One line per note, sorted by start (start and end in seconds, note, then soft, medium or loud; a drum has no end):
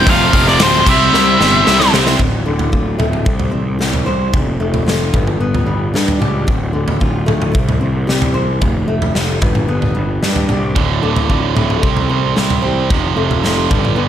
0.07 0.29 F1 medium
0.07 0.58 F2 medium
0.07 0.59 C3 loud
0.07 0.34 F3 loud
0.07 0.33 A3 loud
0.07 0.32 C4 loud
0.07 0.32 F4 medium
0.07 0.48 F5 loud
0.07 kick loud
0.07 open hi-hat medium
0.32 0.56 F1 medium
0.32 0.58 F2 medium
0.32 0.58 C3 medium
0.32 0.59 F3 medium
0.32 0.59 A3 medium
0.32 0.60 C4 medium
0.32 0.60 F4 medium
0.32 kick medium
0.32 open hi-hat medium
0.47 0.61 D5 loud
0.47 snare soft
0.59 0.82 D1 medium
0.59 0.85 F2 loud
0.59 0.85 C3 loud
0.59 0.85 F3 loud
0.59 0.85 A3 loud
0.59 0.86 C4 loud
0.59 0.86 F4 loud
0.59 0.88 C5 loud
0.59 snare loud
0.59 open hi-hat medium
0.86 1.09 C2 medium
0.86 1.40 C3 medium
0.86 1.40 G3 medium
0.86 1.11 C4 medium
0.86 1.13 E4 medium
0.86 1.13 G4 medium
0.86 1.14 C5 medium
0.86 1.90 E5 loud
0.86 kick loud
0.86 crash loud
1.12 1.35 C2 loud
1.12 1.66 C3 medium
1.12 1.38 C3 medium
1.12 1.66 G3 loud
1.12 1.38 G3 loud
1.12 1.39 C4 medium
1.12 1.39 E4 medium
1.12 1.38 G4 medium
1.12 1.38 C5 medium
1.12 snare medium
1.39 1.62 G1 medium
1.39 1.94 C3 medium
1.39 1.94 G3 medium
1.39 1.64 C4 medium
1.39 1.65 E4 medium
1.39 1.65 G4 medium
1.39 1.66 C5 medium
1.39 snare medium
1.65 1.89 C2 medium
1.65 1.91 C3 loud
1.65 1.92 G3 loud
1.65 1.93 C4 medium
1.65 1.92 E4 medium
1.65 1.91 G4 medium
1.65 1.91 C5 medium
1.65 snare medium
1.80 snare medium
1.92 2.16 C2 medium
1.92 2.18 C3 medium
1.92 2.18 G3 medium
1.92 2.19 C4 medium
1.92 2.18 E4 medium
1.92 2.18 G4 medium
1.92 2.18 C5 medium
1.92 snare loud
2.07 snare medium
2.18 2.43 D1 medium
2.18 3.25 D2 medium
2.18 kick medium
2.18 floor tom medium
2.46 2.70 D1 medium
2.46 3.26 D3 medium
2.59 floor tom medium
2.72 2.96 D1 medium
2.72 3.26 F4 medium
2.72 kick medium
2.99 3.24 D1 medium
2.99 3.26 A3 medium
2.99 floor tom medium
2.99 mid tom medium
3.13 mid tom medium
3.25 3.50 C2 medium
3.25 4.32 C3 medium
3.25 kick medium
3.40 floor tom medium
3.51 3.77 C2 medium
3.51 4.33 C4 medium
3.79 4.03 C2 medium
3.79 4.33 G4 medium
3.79 snare medium
3.93 floor tom medium
4.06 4.30 C2 medium
4.06 4.33 C5 medium
4.33 4.57 F1 medium
4.33 5.13 F2 medium
4.33 kick loud
4.33 floor tom medium
4.59 4.83 F1 medium
4.59 5.14 A3 medium
4.74 floor tom medium
4.86 5.10 F1 medium
4.86 5.13 F4 medium
4.86 snare medium
5.14 5.37 G1 medium
5.14 6.46 G2 medium
5.14 kick loud
5.14 floor tom medium
5.14 mid tom medium
5.27 mid tom medium
5.39 5.63 G1 medium
5.39 6.48 B3 medium
5.55 floor tom medium
5.66 5.90 G1 medium
5.66 6.47 G3 medium
5.94 6.17 G2 medium
5.94 6.47 D4 medium
5.94 snare medium
6.08 floor tom medium
6.20 6.45 C#2 medium
6.20 6.47 G4 medium
6.20 mid tom medium
6.47 6.71 D1 medium
6.47 7.53 D2 medium
6.47 kick medium
6.47 floor tom medium
6.73 6.98 D1 medium
6.73 7.54 D3 medium
6.88 floor tom medium
7.00 7.25 D1 medium
7.00 7.54 F4 medium
7.00 kick medium
7.26 7.51 D1 medium
7.26 7.54 A3 medium
7.26 floor tom medium
7.26 mid tom medium
7.42 mid tom medium
7.53 7.78 C2 medium
7.53 8.61 C3 medium
7.53 kick loud
7.69 floor tom medium
7.81 8.05 C2 medium
7.81 8.61 C4 medium
8.07 8.32 C2 medium
8.07 8.61 G4 medium
8.07 snare medium
8.22 floor tom medium
8.34 8.59 C2 medium
8.34 8.61 C5 medium
8.61 8.85 F1 medium
8.61 9.41 F2 medium
8.61 kick medium
8.61 floor tom medium
8.88 9.12 F1 medium
8.88 9.42 A3 medium
9.02 floor tom medium
9.15 9.39 F1 medium
9.15 9.42 F4 medium
9.15 snare medium
9.41 9.66 G1 medium
9.41 10.75 G2 medium
9.41 kick loud
9.41 floor tom medium
9.41 mid tom medium
9.55 mid tom medium
9.68 9.92 G1 medium
9.68 10.76 B3 medium
9.82 floor tom medium
9.95 10.19 G1 medium
9.95 10.76 G3 medium
10.23 10.46 G2 medium
10.23 10.76 D4 medium
10.23 snare medium
10.36 floor tom medium
10.49 10.73 C2 medium
10.49 10.76 G4 medium
10.49 mid tom medium
10.75 10.99 D1 medium
10.75 11.01 D2 medium
10.75 11.83 D2 medium
10.75 11.01 A2 medium
10.75 11.02 D3 medium
10.75 kick medium
10.75 floor tom medium
11.03 11.27 D1 medium
11.03 11.28 D2 medium
11.03 11.29 A2 medium
11.03 11.83 D3 medium
11.03 11.29 D3 medium
11.16 floor tom medium
11.29 11.53 D1 medium
11.29 11.54 D2 medium
11.29 11.55 A2 medium
11.29 11.55 D3 medium
11.29 11.83 F4 medium
11.29 kick medium
11.55 11.80 D1 medium
11.55 11.81 D2 medium
11.55 11.81 A2 medium
11.55 11.81 D3 medium
11.55 11.83 A3 medium
11.55 floor tom medium
11.55 mid tom medium
11.70 mid tom medium
11.82 12.06 C2 medium
11.82 12.08 C3 medium
11.82 12.90 C3 medium
11.82 12.08 G3 medium
11.82 12.08 C4 medium
11.82 kick loud
11.97 floor tom medium
12.09 12.33 C2 medium
12.09 12.35 C3 medium
12.09 12.35 G3 medium
12.09 12.90 C4 medium
12.09 12.36 C4 medium
12.36 12.60 C2 medium
12.36 12.61 C3 medium
12.36 12.62 G3 medium
12.36 12.62 C4 medium
12.36 12.90 G4 medium
12.36 snare medium
12.50 floor tom medium
12.62 12.87 C2 medium
12.62 12.88 C3 medium
12.62 12.89 G3 medium
12.62 12.89 C4 medium
12.62 12.90 C5 medium
12.90 13.14 F1 medium
12.90 13.69 F2 medium
12.90 13.16 F2 loud
12.90 13.16 C3 medium
12.90 13.17 F3 medium
12.90 kick medium
12.90 floor tom medium
13.16 13.40 F1 medium
13.16 13.42 F2 medium
13.16 13.42 C3 medium
13.16 13.43 F3 medium
13.16 13.70 A3 medium
13.31 floor tom medium
13.43 13.67 F1 medium
13.43 13.69 F2 medium
13.43 13.69 C3 medium
13.43 13.69 F3 medium
13.43 13.70 F4 medium
13.43 snare medium
13.69 13.95 G1 medium
13.69 14.08 G2 medium
13.69 13.95 G2 medium
13.69 13.95 D3 medium
13.69 13.96 G3 loud
13.69 kick medium
13.69 floor tom medium
13.69 mid tom medium
13.85 mid tom medium
13.96 14.08 G1 medium
13.96 14.08 G2 medium
13.96 14.08 D3 medium
13.96 14.08 G3 medium
13.96 14.08 B3 medium